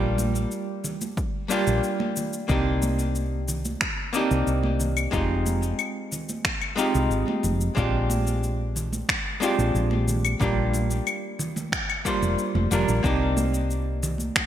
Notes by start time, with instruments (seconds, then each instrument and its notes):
Already playing: fretless electric bass A#1, hollow-body jazz guitar G3 A#3 D4 F4 G4
0.18 high conga, shaker
0.35 shaker
0.51 shaker
0.84 low conga, shaker
1.01 high conga, shaker
1.17 kick, shaker
1.48 hollow-body jazz guitar G3 A#3 D4 F4 G4, shaker
1.67 fretless electric bass A#1, shaker
1.84 shaker
2.00 high conga
2.16 low conga, shaker
2.33 shaker
2.48 fretless electric bass C2, hollow-body jazz guitar A#3 C4 D4 D#4 G4, kick, shaker
2.82 high conga, shaker
2.99 shaker
3.15 shaker
3.48 low conga, shaker
3.65 high conga, shaker
3.81 finger snap, kick, shaker
4.13 hollow-body jazz guitar A#3 C4 D4 D#4 G4, shaker
4.31 fretless electric bass C2, shaker
4.47 fretless electric bass C2, shaker
4.63 high conga
4.80 low conga, shaker
4.97 claves, shaker
5.11 fretless electric bass F1, hollow-body jazz guitar G#3 C4 D#4 F4 G4, kick, shaker
5.46 high conga, shaker
5.63 shaker
5.79 claves, shaker
6.12 low conga, shaker
6.29 high conga, shaker
6.45 finger snap, kick, shaker
6.62 claves
6.76 hollow-body jazz guitar G#3 C4 D#4 F4 G4, shaker
6.95 fretless electric bass C2, shaker
7.10 fretless electric bass G#1, shaker
7.28 high conga
7.43 fretless electric bass F1, low conga, shaker
7.61 shaker
7.75 fretless electric bass A#1, hollow-body jazz guitar G#3 C4 D4 F4 G4, kick, shaker
8.10 high conga, shaker
8.27 shaker
8.43 shaker
8.76 low conga, shaker
8.93 high conga, shaker
9.09 finger snap, kick, shaker
9.40 hollow-body jazz guitar G#3 C4 D4 F4 G4, shaker
9.59 fretless electric bass A#1, shaker
9.75 fretless electric bass A#1, shaker
9.91 high conga
10.08 low conga, shaker
10.25 claves, shaker
10.39 fretless electric bass A#1, hollow-body jazz guitar G3 A#3 D4 F4 G4, kick, shaker
10.74 high conga, shaker
10.91 shaker
11.07 claves, shaker
11.39 low conga, shaker
11.56 high conga, low conga, shaker
11.72 finger snap, kick, shaker
11.90 claves
12.05 hollow-body jazz guitar G3 A#3 D4 F4 C5, kick, shaker
12.22 fretless electric bass F1, shaker
12.39 shaker
12.55 fretless electric bass F1, high conga
12.71 fretless electric bass F1, hollow-body jazz guitar G3 A#3 D4 F4 A#4, low conga, shaker
12.88 fretless electric bass A#1, shaker
13.03 fretless electric bass C2, hollow-body jazz guitar A#3 C4 D4 D#4 G4, kick, shaker
13.37 high conga, shaker
13.54 shaker
13.71 shaker
14.03 low conga, shaker
14.18 high conga, shaker
14.36 finger snap, kick, shaker